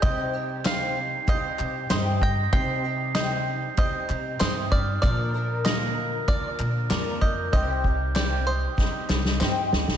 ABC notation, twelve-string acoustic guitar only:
X:1
M:4/4
L:1/8
Q:1/4=96
K:Cm
V:1 name="Twelve-string acoustic guitar"
[C,G,CEG] [CEG] [C,G,CEG] [CEG] [G,CEG] [CEG] [C,G,CEG] [EG] | [C,G,CEG] [CEG] [C,G,CEG] [CEG] [G,CEG] [CEG] [C,G,CEG] [CEG] | [B,,D,F,B,DB] [F,B,DB] [B,,D,F,B,B] [F,B,B] [F,DB] [F,B,DB] [B,,D,F,B,DB] [F,B,B] | [C,G,CEG] [CEG] [C,G,CEG] [CEG] [G,CEG] [CEG] [C,G,CEG] [CEG] |]